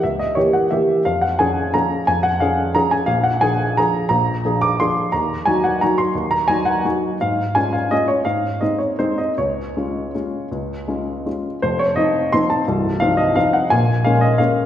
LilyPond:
\new Staff \with { instrumentName = "Grand piano" } { \time 3/4 \key des \major \tempo 4 = 173 << { fes''8 ees''8 des''8 ges''8 fes''4 | f''8 ges''8 aes''4 bes''4 | aes''8 ges''8 f''4 bes''8 aes''8 | f''8 ges''8 aes''4 bes''4 |
bes''4. d'''8 c'''4 | bes''4 aes''8 ges''8 bes''8 c'''8~ | c'''8 bes''8 aes''8 ges''8 r4 | f''4 aes''8 f''8 ees''8 des''8 |
f''4 ees''8 des''8 c''8 ees''8 | des''2.~ | des''2~ des''8 r8 | c''8 des''8 ees''4 c'''8 a''8~ |
a''4 f''8 ees''8 f''8 ges''8 | aes''4 f''8 ees''8 f''4 | } \\ { des,4 <fes bes g'>4 <fes bes g'>4 | f,4 <f des' aes'>4 <f des' aes'>4 | f,4 <f des' aes'>4 <f des' aes'>4 | bes,,4 <f d' aes'>4 <f d' aes'>4 |
bes,,4 <f d' aes'>4 <f d' aes'>4 | ees,4 <ges ees' ges'>4 <ges ees' ges'>4 | ees,4 <ges ees' ges'>4 <ges ees' ges'>4 | aes,4 <aes des' f'>4 <aes des' f'>4 |
aes,4 <aes c' ees'>4 <aes c' ees'>4 | des,4 <aes des' f'>4 <aes des' f'>4 | des,4 <aes des' f'>4 <aes des' f'>4 | <f,, f,>4 <f c' ees'>4 <f c' ees'>4 |
<c,, c,>4 <f c' ees'>4 <f c' ees'>4 | <bes,, bes,>4 <aes bes des'>4 <aes bes des'>4 | } >> }